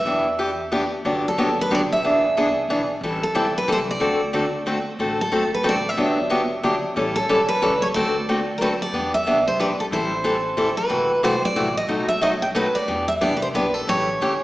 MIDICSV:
0, 0, Header, 1, 4, 480
1, 0, Start_track
1, 0, Key_signature, 1, "major"
1, 0, Tempo, 328947
1, 98, Time_signature, 3, 2, 24, 8
1, 13045, Key_signature, 1, "minor"
1, 21065, End_track
2, 0, Start_track
2, 0, Title_t, "Steel-string acoustic guitar"
2, 0, Program_c, 0, 25
2, 0, Note_on_c, 0, 76, 75
2, 1022, Note_off_c, 0, 76, 0
2, 1869, Note_on_c, 0, 69, 79
2, 2291, Note_off_c, 0, 69, 0
2, 2354, Note_on_c, 0, 71, 82
2, 2529, Note_off_c, 0, 71, 0
2, 2549, Note_on_c, 0, 74, 90
2, 2622, Note_off_c, 0, 74, 0
2, 2808, Note_on_c, 0, 76, 85
2, 4171, Note_off_c, 0, 76, 0
2, 4718, Note_on_c, 0, 69, 82
2, 5152, Note_off_c, 0, 69, 0
2, 5220, Note_on_c, 0, 71, 86
2, 5382, Note_off_c, 0, 71, 0
2, 5433, Note_on_c, 0, 72, 93
2, 5506, Note_off_c, 0, 72, 0
2, 5701, Note_on_c, 0, 74, 94
2, 7056, Note_off_c, 0, 74, 0
2, 7605, Note_on_c, 0, 69, 76
2, 8034, Note_off_c, 0, 69, 0
2, 8090, Note_on_c, 0, 71, 80
2, 8255, Note_off_c, 0, 71, 0
2, 8300, Note_on_c, 0, 74, 92
2, 8592, Note_off_c, 0, 74, 0
2, 8592, Note_on_c, 0, 76, 88
2, 9999, Note_off_c, 0, 76, 0
2, 10443, Note_on_c, 0, 69, 81
2, 10891, Note_off_c, 0, 69, 0
2, 10922, Note_on_c, 0, 71, 90
2, 11406, Note_off_c, 0, 71, 0
2, 11411, Note_on_c, 0, 73, 84
2, 11484, Note_off_c, 0, 73, 0
2, 11591, Note_on_c, 0, 74, 92
2, 12517, Note_on_c, 0, 70, 55
2, 12566, Note_off_c, 0, 70, 0
2, 12579, Note_on_c, 0, 71, 75
2, 12653, Note_off_c, 0, 71, 0
2, 12781, Note_off_c, 0, 74, 0
2, 12870, Note_on_c, 0, 74, 77
2, 13334, Note_off_c, 0, 74, 0
2, 13340, Note_on_c, 0, 76, 83
2, 13821, Note_off_c, 0, 76, 0
2, 13827, Note_on_c, 0, 72, 76
2, 14010, Note_off_c, 0, 72, 0
2, 14016, Note_on_c, 0, 71, 73
2, 14090, Note_off_c, 0, 71, 0
2, 14301, Note_on_c, 0, 69, 68
2, 14374, Note_off_c, 0, 69, 0
2, 14493, Note_on_c, 0, 72, 81
2, 15712, Note_off_c, 0, 72, 0
2, 15718, Note_on_c, 0, 71, 78
2, 16355, Note_off_c, 0, 71, 0
2, 16411, Note_on_c, 0, 72, 84
2, 16700, Note_off_c, 0, 72, 0
2, 16709, Note_on_c, 0, 74, 87
2, 17147, Note_off_c, 0, 74, 0
2, 17181, Note_on_c, 0, 75, 82
2, 17628, Note_off_c, 0, 75, 0
2, 17634, Note_on_c, 0, 76, 86
2, 17837, Note_off_c, 0, 76, 0
2, 17842, Note_on_c, 0, 75, 88
2, 17920, Note_off_c, 0, 75, 0
2, 18126, Note_on_c, 0, 79, 82
2, 18199, Note_off_c, 0, 79, 0
2, 18329, Note_on_c, 0, 71, 81
2, 18604, Note_on_c, 0, 74, 81
2, 18621, Note_off_c, 0, 71, 0
2, 19056, Note_off_c, 0, 74, 0
2, 19087, Note_on_c, 0, 76, 87
2, 19159, Note_off_c, 0, 76, 0
2, 19282, Note_on_c, 0, 74, 87
2, 19484, Note_off_c, 0, 74, 0
2, 19504, Note_on_c, 0, 71, 60
2, 19575, Note_off_c, 0, 71, 0
2, 19586, Note_on_c, 0, 72, 81
2, 19659, Note_off_c, 0, 72, 0
2, 19772, Note_on_c, 0, 71, 76
2, 20047, Note_off_c, 0, 71, 0
2, 20047, Note_on_c, 0, 69, 74
2, 20258, Note_off_c, 0, 69, 0
2, 20269, Note_on_c, 0, 73, 93
2, 21065, Note_off_c, 0, 73, 0
2, 21065, End_track
3, 0, Start_track
3, 0, Title_t, "Steel-string acoustic guitar"
3, 0, Program_c, 1, 25
3, 84, Note_on_c, 1, 52, 60
3, 95, Note_on_c, 1, 59, 61
3, 97, Note_on_c, 1, 67, 61
3, 103, Note_on_c, 1, 62, 62
3, 380, Note_off_c, 1, 52, 0
3, 385, Note_off_c, 1, 59, 0
3, 386, Note_off_c, 1, 67, 0
3, 389, Note_off_c, 1, 62, 0
3, 562, Note_on_c, 1, 59, 72
3, 566, Note_on_c, 1, 52, 77
3, 569, Note_on_c, 1, 62, 82
3, 573, Note_on_c, 1, 67, 88
3, 724, Note_off_c, 1, 59, 0
3, 726, Note_off_c, 1, 52, 0
3, 728, Note_off_c, 1, 62, 0
3, 730, Note_off_c, 1, 67, 0
3, 1044, Note_on_c, 1, 59, 82
3, 1048, Note_on_c, 1, 52, 80
3, 1056, Note_on_c, 1, 67, 89
3, 1057, Note_on_c, 1, 62, 86
3, 1205, Note_off_c, 1, 59, 0
3, 1207, Note_off_c, 1, 52, 0
3, 1211, Note_off_c, 1, 62, 0
3, 1211, Note_off_c, 1, 67, 0
3, 1531, Note_on_c, 1, 50, 64
3, 1532, Note_on_c, 1, 54, 66
3, 1536, Note_on_c, 1, 59, 62
3, 1537, Note_on_c, 1, 62, 64
3, 1543, Note_on_c, 1, 67, 68
3, 1822, Note_off_c, 1, 50, 0
3, 1822, Note_off_c, 1, 54, 0
3, 1825, Note_off_c, 1, 59, 0
3, 1825, Note_off_c, 1, 62, 0
3, 1828, Note_off_c, 1, 67, 0
3, 2012, Note_on_c, 1, 54, 79
3, 2013, Note_on_c, 1, 50, 76
3, 2020, Note_on_c, 1, 59, 84
3, 2021, Note_on_c, 1, 67, 76
3, 2022, Note_on_c, 1, 62, 77
3, 2168, Note_off_c, 1, 54, 0
3, 2169, Note_off_c, 1, 50, 0
3, 2172, Note_off_c, 1, 59, 0
3, 2172, Note_off_c, 1, 67, 0
3, 2173, Note_off_c, 1, 62, 0
3, 2492, Note_on_c, 1, 50, 76
3, 2496, Note_on_c, 1, 54, 79
3, 2497, Note_on_c, 1, 59, 85
3, 2497, Note_on_c, 1, 62, 86
3, 2503, Note_on_c, 1, 67, 88
3, 2648, Note_off_c, 1, 50, 0
3, 2650, Note_off_c, 1, 54, 0
3, 2650, Note_off_c, 1, 59, 0
3, 2650, Note_off_c, 1, 62, 0
3, 2653, Note_off_c, 1, 67, 0
3, 2981, Note_on_c, 1, 59, 56
3, 2985, Note_on_c, 1, 52, 58
3, 2990, Note_on_c, 1, 62, 65
3, 2998, Note_on_c, 1, 68, 66
3, 3266, Note_off_c, 1, 59, 0
3, 3268, Note_off_c, 1, 52, 0
3, 3270, Note_off_c, 1, 62, 0
3, 3274, Note_off_c, 1, 68, 0
3, 3457, Note_on_c, 1, 52, 75
3, 3463, Note_on_c, 1, 59, 76
3, 3467, Note_on_c, 1, 62, 84
3, 3471, Note_on_c, 1, 68, 87
3, 3609, Note_off_c, 1, 52, 0
3, 3613, Note_off_c, 1, 59, 0
3, 3615, Note_off_c, 1, 62, 0
3, 3616, Note_off_c, 1, 68, 0
3, 3940, Note_on_c, 1, 59, 89
3, 3941, Note_on_c, 1, 52, 77
3, 3941, Note_on_c, 1, 62, 81
3, 3944, Note_on_c, 1, 68, 84
3, 4090, Note_off_c, 1, 59, 0
3, 4091, Note_off_c, 1, 52, 0
3, 4091, Note_off_c, 1, 62, 0
3, 4093, Note_off_c, 1, 68, 0
3, 4427, Note_on_c, 1, 55, 67
3, 4428, Note_on_c, 1, 52, 65
3, 4433, Note_on_c, 1, 60, 66
3, 4434, Note_on_c, 1, 69, 73
3, 4437, Note_on_c, 1, 64, 69
3, 4708, Note_off_c, 1, 52, 0
3, 4708, Note_off_c, 1, 55, 0
3, 4711, Note_off_c, 1, 60, 0
3, 4711, Note_off_c, 1, 69, 0
3, 4712, Note_off_c, 1, 64, 0
3, 4884, Note_on_c, 1, 55, 84
3, 4886, Note_on_c, 1, 52, 83
3, 4889, Note_on_c, 1, 69, 82
3, 4892, Note_on_c, 1, 64, 84
3, 4894, Note_on_c, 1, 60, 84
3, 5042, Note_off_c, 1, 55, 0
3, 5043, Note_off_c, 1, 52, 0
3, 5045, Note_off_c, 1, 69, 0
3, 5046, Note_off_c, 1, 64, 0
3, 5047, Note_off_c, 1, 60, 0
3, 5368, Note_on_c, 1, 52, 78
3, 5369, Note_on_c, 1, 55, 89
3, 5373, Note_on_c, 1, 60, 87
3, 5378, Note_on_c, 1, 64, 84
3, 5384, Note_on_c, 1, 69, 91
3, 5524, Note_off_c, 1, 52, 0
3, 5524, Note_off_c, 1, 55, 0
3, 5526, Note_off_c, 1, 60, 0
3, 5529, Note_off_c, 1, 64, 0
3, 5531, Note_off_c, 1, 69, 0
3, 5835, Note_on_c, 1, 57, 63
3, 5839, Note_on_c, 1, 50, 58
3, 5846, Note_on_c, 1, 66, 67
3, 5848, Note_on_c, 1, 60, 68
3, 5849, Note_on_c, 1, 69, 70
3, 6131, Note_off_c, 1, 57, 0
3, 6133, Note_off_c, 1, 50, 0
3, 6136, Note_off_c, 1, 66, 0
3, 6137, Note_off_c, 1, 60, 0
3, 6138, Note_off_c, 1, 69, 0
3, 6320, Note_on_c, 1, 50, 82
3, 6326, Note_on_c, 1, 57, 79
3, 6328, Note_on_c, 1, 66, 85
3, 6331, Note_on_c, 1, 60, 79
3, 6337, Note_on_c, 1, 69, 80
3, 6479, Note_off_c, 1, 50, 0
3, 6482, Note_off_c, 1, 57, 0
3, 6483, Note_off_c, 1, 66, 0
3, 6484, Note_off_c, 1, 60, 0
3, 6487, Note_off_c, 1, 69, 0
3, 6800, Note_on_c, 1, 50, 83
3, 6808, Note_on_c, 1, 60, 86
3, 6809, Note_on_c, 1, 57, 76
3, 6815, Note_on_c, 1, 66, 81
3, 6824, Note_on_c, 1, 69, 86
3, 6958, Note_off_c, 1, 50, 0
3, 6963, Note_off_c, 1, 57, 0
3, 6963, Note_off_c, 1, 60, 0
3, 6966, Note_off_c, 1, 66, 0
3, 6970, Note_off_c, 1, 69, 0
3, 7286, Note_on_c, 1, 50, 62
3, 7292, Note_on_c, 1, 57, 64
3, 7294, Note_on_c, 1, 60, 67
3, 7299, Note_on_c, 1, 66, 66
3, 7300, Note_on_c, 1, 69, 70
3, 7575, Note_off_c, 1, 50, 0
3, 7578, Note_off_c, 1, 57, 0
3, 7579, Note_off_c, 1, 60, 0
3, 7582, Note_off_c, 1, 66, 0
3, 7582, Note_off_c, 1, 69, 0
3, 7757, Note_on_c, 1, 50, 74
3, 7758, Note_on_c, 1, 57, 78
3, 7766, Note_on_c, 1, 66, 83
3, 7767, Note_on_c, 1, 69, 79
3, 7770, Note_on_c, 1, 60, 75
3, 7917, Note_off_c, 1, 50, 0
3, 7917, Note_off_c, 1, 57, 0
3, 7921, Note_off_c, 1, 66, 0
3, 7921, Note_off_c, 1, 69, 0
3, 7923, Note_off_c, 1, 60, 0
3, 8220, Note_on_c, 1, 50, 73
3, 8231, Note_on_c, 1, 60, 92
3, 8231, Note_on_c, 1, 69, 83
3, 8232, Note_on_c, 1, 57, 85
3, 8240, Note_on_c, 1, 66, 81
3, 8388, Note_off_c, 1, 50, 0
3, 8393, Note_off_c, 1, 60, 0
3, 8393, Note_off_c, 1, 69, 0
3, 8394, Note_off_c, 1, 57, 0
3, 8397, Note_off_c, 1, 66, 0
3, 8713, Note_on_c, 1, 50, 60
3, 8716, Note_on_c, 1, 59, 69
3, 8718, Note_on_c, 1, 54, 65
3, 8725, Note_on_c, 1, 67, 69
3, 8727, Note_on_c, 1, 62, 73
3, 9008, Note_off_c, 1, 50, 0
3, 9010, Note_off_c, 1, 54, 0
3, 9010, Note_off_c, 1, 59, 0
3, 9014, Note_off_c, 1, 67, 0
3, 9015, Note_off_c, 1, 62, 0
3, 9187, Note_on_c, 1, 50, 76
3, 9194, Note_on_c, 1, 62, 83
3, 9195, Note_on_c, 1, 54, 77
3, 9196, Note_on_c, 1, 59, 83
3, 9201, Note_on_c, 1, 67, 90
3, 9350, Note_off_c, 1, 50, 0
3, 9354, Note_off_c, 1, 62, 0
3, 9355, Note_off_c, 1, 54, 0
3, 9355, Note_off_c, 1, 59, 0
3, 9358, Note_off_c, 1, 67, 0
3, 9680, Note_on_c, 1, 59, 84
3, 9681, Note_on_c, 1, 50, 87
3, 9683, Note_on_c, 1, 54, 80
3, 9693, Note_on_c, 1, 62, 95
3, 9693, Note_on_c, 1, 67, 85
3, 9837, Note_off_c, 1, 50, 0
3, 9837, Note_off_c, 1, 59, 0
3, 9838, Note_off_c, 1, 54, 0
3, 9843, Note_off_c, 1, 62, 0
3, 9843, Note_off_c, 1, 67, 0
3, 10158, Note_on_c, 1, 52, 62
3, 10163, Note_on_c, 1, 55, 69
3, 10167, Note_on_c, 1, 61, 73
3, 10168, Note_on_c, 1, 64, 71
3, 10175, Note_on_c, 1, 69, 74
3, 10450, Note_off_c, 1, 52, 0
3, 10453, Note_off_c, 1, 55, 0
3, 10455, Note_off_c, 1, 61, 0
3, 10455, Note_off_c, 1, 64, 0
3, 10458, Note_off_c, 1, 69, 0
3, 10641, Note_on_c, 1, 52, 81
3, 10641, Note_on_c, 1, 55, 86
3, 10643, Note_on_c, 1, 64, 83
3, 10644, Note_on_c, 1, 61, 85
3, 10655, Note_on_c, 1, 69, 88
3, 10797, Note_off_c, 1, 52, 0
3, 10797, Note_off_c, 1, 55, 0
3, 10798, Note_off_c, 1, 64, 0
3, 10799, Note_off_c, 1, 61, 0
3, 10804, Note_off_c, 1, 69, 0
3, 11117, Note_on_c, 1, 52, 82
3, 11121, Note_on_c, 1, 55, 83
3, 11122, Note_on_c, 1, 61, 92
3, 11133, Note_on_c, 1, 69, 92
3, 11137, Note_on_c, 1, 64, 94
3, 11275, Note_off_c, 1, 52, 0
3, 11277, Note_off_c, 1, 55, 0
3, 11278, Note_off_c, 1, 61, 0
3, 11283, Note_off_c, 1, 69, 0
3, 11285, Note_off_c, 1, 64, 0
3, 11605, Note_on_c, 1, 50, 60
3, 11610, Note_on_c, 1, 57, 66
3, 11612, Note_on_c, 1, 60, 71
3, 11612, Note_on_c, 1, 66, 68
3, 11620, Note_on_c, 1, 69, 73
3, 11893, Note_off_c, 1, 50, 0
3, 11896, Note_off_c, 1, 57, 0
3, 11897, Note_off_c, 1, 60, 0
3, 11897, Note_off_c, 1, 66, 0
3, 11901, Note_off_c, 1, 69, 0
3, 12092, Note_on_c, 1, 50, 70
3, 12096, Note_on_c, 1, 60, 81
3, 12099, Note_on_c, 1, 57, 77
3, 12103, Note_on_c, 1, 66, 83
3, 12106, Note_on_c, 1, 69, 83
3, 12242, Note_off_c, 1, 50, 0
3, 12245, Note_off_c, 1, 60, 0
3, 12246, Note_off_c, 1, 57, 0
3, 12248, Note_off_c, 1, 66, 0
3, 12249, Note_off_c, 1, 69, 0
3, 12563, Note_on_c, 1, 57, 75
3, 12564, Note_on_c, 1, 50, 80
3, 12572, Note_on_c, 1, 60, 79
3, 12574, Note_on_c, 1, 66, 82
3, 12581, Note_on_c, 1, 69, 81
3, 12718, Note_off_c, 1, 57, 0
3, 12719, Note_off_c, 1, 50, 0
3, 12723, Note_off_c, 1, 60, 0
3, 12724, Note_off_c, 1, 66, 0
3, 12727, Note_off_c, 1, 69, 0
3, 13040, Note_on_c, 1, 59, 60
3, 13041, Note_on_c, 1, 52, 59
3, 13054, Note_on_c, 1, 67, 62
3, 13056, Note_on_c, 1, 62, 61
3, 13331, Note_off_c, 1, 52, 0
3, 13331, Note_off_c, 1, 59, 0
3, 13338, Note_off_c, 1, 67, 0
3, 13339, Note_off_c, 1, 62, 0
3, 13522, Note_on_c, 1, 52, 77
3, 13528, Note_on_c, 1, 59, 77
3, 13531, Note_on_c, 1, 62, 85
3, 13540, Note_on_c, 1, 67, 83
3, 13678, Note_off_c, 1, 52, 0
3, 13681, Note_off_c, 1, 59, 0
3, 13682, Note_off_c, 1, 62, 0
3, 13687, Note_off_c, 1, 67, 0
3, 13999, Note_on_c, 1, 59, 87
3, 14001, Note_on_c, 1, 52, 79
3, 14007, Note_on_c, 1, 62, 76
3, 14008, Note_on_c, 1, 67, 80
3, 14157, Note_off_c, 1, 59, 0
3, 14158, Note_off_c, 1, 52, 0
3, 14161, Note_off_c, 1, 62, 0
3, 14161, Note_off_c, 1, 67, 0
3, 14478, Note_on_c, 1, 52, 61
3, 14480, Note_on_c, 1, 55, 62
3, 14480, Note_on_c, 1, 60, 70
3, 14489, Note_on_c, 1, 64, 72
3, 14489, Note_on_c, 1, 69, 71
3, 14771, Note_off_c, 1, 52, 0
3, 14771, Note_off_c, 1, 60, 0
3, 14772, Note_off_c, 1, 55, 0
3, 14776, Note_off_c, 1, 64, 0
3, 14776, Note_off_c, 1, 69, 0
3, 14942, Note_on_c, 1, 52, 80
3, 14949, Note_on_c, 1, 60, 82
3, 14952, Note_on_c, 1, 64, 78
3, 14955, Note_on_c, 1, 55, 85
3, 14956, Note_on_c, 1, 69, 85
3, 15109, Note_off_c, 1, 52, 0
3, 15112, Note_off_c, 1, 60, 0
3, 15114, Note_off_c, 1, 64, 0
3, 15115, Note_off_c, 1, 55, 0
3, 15116, Note_off_c, 1, 69, 0
3, 15423, Note_on_c, 1, 52, 79
3, 15428, Note_on_c, 1, 55, 82
3, 15434, Note_on_c, 1, 64, 83
3, 15436, Note_on_c, 1, 60, 79
3, 15436, Note_on_c, 1, 69, 94
3, 15589, Note_off_c, 1, 52, 0
3, 15592, Note_off_c, 1, 55, 0
3, 15595, Note_off_c, 1, 64, 0
3, 15596, Note_off_c, 1, 60, 0
3, 15596, Note_off_c, 1, 69, 0
3, 15895, Note_on_c, 1, 52, 68
3, 15896, Note_on_c, 1, 48, 65
3, 15897, Note_on_c, 1, 64, 69
3, 15899, Note_on_c, 1, 57, 68
3, 15907, Note_on_c, 1, 66, 76
3, 16200, Note_off_c, 1, 52, 0
3, 16201, Note_off_c, 1, 48, 0
3, 16202, Note_off_c, 1, 64, 0
3, 16203, Note_off_c, 1, 57, 0
3, 16207, Note_off_c, 1, 66, 0
3, 16388, Note_on_c, 1, 48, 81
3, 16390, Note_on_c, 1, 52, 83
3, 16396, Note_on_c, 1, 64, 83
3, 16398, Note_on_c, 1, 66, 90
3, 16399, Note_on_c, 1, 57, 78
3, 16553, Note_off_c, 1, 48, 0
3, 16554, Note_off_c, 1, 52, 0
3, 16557, Note_off_c, 1, 64, 0
3, 16558, Note_off_c, 1, 66, 0
3, 16559, Note_off_c, 1, 57, 0
3, 16869, Note_on_c, 1, 48, 78
3, 16870, Note_on_c, 1, 52, 76
3, 16870, Note_on_c, 1, 64, 90
3, 16871, Note_on_c, 1, 57, 89
3, 16878, Note_on_c, 1, 66, 89
3, 17034, Note_off_c, 1, 48, 0
3, 17034, Note_off_c, 1, 52, 0
3, 17034, Note_off_c, 1, 64, 0
3, 17035, Note_off_c, 1, 57, 0
3, 17038, Note_off_c, 1, 66, 0
3, 17335, Note_on_c, 1, 47, 58
3, 17341, Note_on_c, 1, 57, 65
3, 17343, Note_on_c, 1, 54, 60
3, 17344, Note_on_c, 1, 63, 60
3, 17353, Note_on_c, 1, 66, 66
3, 17642, Note_off_c, 1, 47, 0
3, 17645, Note_off_c, 1, 57, 0
3, 17646, Note_off_c, 1, 54, 0
3, 17646, Note_off_c, 1, 63, 0
3, 17651, Note_off_c, 1, 66, 0
3, 17822, Note_on_c, 1, 47, 80
3, 17823, Note_on_c, 1, 54, 76
3, 17830, Note_on_c, 1, 57, 79
3, 17834, Note_on_c, 1, 63, 87
3, 17836, Note_on_c, 1, 66, 79
3, 17991, Note_off_c, 1, 47, 0
3, 17992, Note_off_c, 1, 54, 0
3, 17995, Note_off_c, 1, 57, 0
3, 17997, Note_off_c, 1, 63, 0
3, 17998, Note_off_c, 1, 66, 0
3, 18307, Note_on_c, 1, 47, 82
3, 18308, Note_on_c, 1, 54, 77
3, 18310, Note_on_c, 1, 57, 82
3, 18319, Note_on_c, 1, 63, 88
3, 18321, Note_on_c, 1, 66, 92
3, 18474, Note_off_c, 1, 47, 0
3, 18475, Note_off_c, 1, 54, 0
3, 18476, Note_off_c, 1, 57, 0
3, 18480, Note_off_c, 1, 63, 0
3, 18481, Note_off_c, 1, 66, 0
3, 18790, Note_on_c, 1, 52, 65
3, 18793, Note_on_c, 1, 59, 63
3, 18793, Note_on_c, 1, 67, 70
3, 18797, Note_on_c, 1, 62, 60
3, 19090, Note_off_c, 1, 52, 0
3, 19092, Note_off_c, 1, 59, 0
3, 19092, Note_off_c, 1, 67, 0
3, 19094, Note_off_c, 1, 62, 0
3, 19276, Note_on_c, 1, 52, 80
3, 19279, Note_on_c, 1, 59, 84
3, 19283, Note_on_c, 1, 62, 81
3, 19284, Note_on_c, 1, 67, 89
3, 19440, Note_off_c, 1, 52, 0
3, 19441, Note_off_c, 1, 59, 0
3, 19443, Note_off_c, 1, 62, 0
3, 19444, Note_off_c, 1, 67, 0
3, 19763, Note_on_c, 1, 52, 76
3, 19776, Note_on_c, 1, 59, 83
3, 19779, Note_on_c, 1, 62, 78
3, 19782, Note_on_c, 1, 67, 85
3, 19924, Note_off_c, 1, 52, 0
3, 19930, Note_off_c, 1, 59, 0
3, 19932, Note_off_c, 1, 62, 0
3, 19933, Note_off_c, 1, 67, 0
3, 20252, Note_on_c, 1, 49, 59
3, 20254, Note_on_c, 1, 52, 63
3, 20264, Note_on_c, 1, 61, 71
3, 20267, Note_on_c, 1, 57, 67
3, 20267, Note_on_c, 1, 67, 74
3, 20543, Note_off_c, 1, 49, 0
3, 20544, Note_off_c, 1, 52, 0
3, 20549, Note_off_c, 1, 61, 0
3, 20551, Note_off_c, 1, 57, 0
3, 20551, Note_off_c, 1, 67, 0
3, 20738, Note_on_c, 1, 49, 77
3, 20745, Note_on_c, 1, 52, 86
3, 20746, Note_on_c, 1, 57, 83
3, 20749, Note_on_c, 1, 61, 87
3, 20755, Note_on_c, 1, 67, 85
3, 20892, Note_off_c, 1, 49, 0
3, 20896, Note_off_c, 1, 52, 0
3, 20897, Note_off_c, 1, 57, 0
3, 20898, Note_off_c, 1, 61, 0
3, 20901, Note_off_c, 1, 67, 0
3, 21065, End_track
4, 0, Start_track
4, 0, Title_t, "Upright bass"
4, 0, Program_c, 2, 32
4, 75, Note_on_c, 2, 40, 82
4, 1235, Note_off_c, 2, 40, 0
4, 1528, Note_on_c, 2, 31, 84
4, 1915, Note_off_c, 2, 31, 0
4, 1996, Note_on_c, 2, 31, 73
4, 2412, Note_off_c, 2, 31, 0
4, 2484, Note_on_c, 2, 30, 74
4, 2896, Note_off_c, 2, 30, 0
4, 2951, Note_on_c, 2, 28, 80
4, 3344, Note_off_c, 2, 28, 0
4, 3435, Note_on_c, 2, 36, 74
4, 3850, Note_off_c, 2, 36, 0
4, 3920, Note_on_c, 2, 35, 75
4, 4333, Note_off_c, 2, 35, 0
4, 4390, Note_on_c, 2, 33, 83
4, 4782, Note_off_c, 2, 33, 0
4, 4868, Note_on_c, 2, 35, 73
4, 5286, Note_off_c, 2, 35, 0
4, 5362, Note_on_c, 2, 36, 80
4, 5773, Note_off_c, 2, 36, 0
4, 5838, Note_on_c, 2, 38, 86
4, 6994, Note_off_c, 2, 38, 0
4, 7276, Note_on_c, 2, 33, 76
4, 7664, Note_off_c, 2, 33, 0
4, 7756, Note_on_c, 2, 35, 73
4, 8169, Note_off_c, 2, 35, 0
4, 8228, Note_on_c, 2, 33, 75
4, 8644, Note_off_c, 2, 33, 0
4, 8710, Note_on_c, 2, 31, 82
4, 9867, Note_off_c, 2, 31, 0
4, 10153, Note_on_c, 2, 33, 88
4, 10541, Note_off_c, 2, 33, 0
4, 10633, Note_on_c, 2, 35, 80
4, 11046, Note_off_c, 2, 35, 0
4, 11121, Note_on_c, 2, 37, 83
4, 11531, Note_off_c, 2, 37, 0
4, 11595, Note_on_c, 2, 38, 85
4, 12751, Note_off_c, 2, 38, 0
4, 13018, Note_on_c, 2, 40, 78
4, 13413, Note_off_c, 2, 40, 0
4, 13498, Note_on_c, 2, 36, 70
4, 13918, Note_off_c, 2, 36, 0
4, 13976, Note_on_c, 2, 35, 72
4, 14397, Note_off_c, 2, 35, 0
4, 14464, Note_on_c, 2, 33, 79
4, 15626, Note_off_c, 2, 33, 0
4, 15899, Note_on_c, 2, 30, 85
4, 16295, Note_off_c, 2, 30, 0
4, 16381, Note_on_c, 2, 31, 71
4, 16802, Note_off_c, 2, 31, 0
4, 16859, Note_on_c, 2, 33, 75
4, 17281, Note_off_c, 2, 33, 0
4, 17345, Note_on_c, 2, 35, 79
4, 18509, Note_off_c, 2, 35, 0
4, 18798, Note_on_c, 2, 40, 79
4, 19189, Note_off_c, 2, 40, 0
4, 19286, Note_on_c, 2, 36, 73
4, 19699, Note_off_c, 2, 36, 0
4, 19757, Note_on_c, 2, 35, 73
4, 20173, Note_off_c, 2, 35, 0
4, 20242, Note_on_c, 2, 33, 83
4, 20633, Note_off_c, 2, 33, 0
4, 20724, Note_on_c, 2, 31, 69
4, 21065, Note_off_c, 2, 31, 0
4, 21065, End_track
0, 0, End_of_file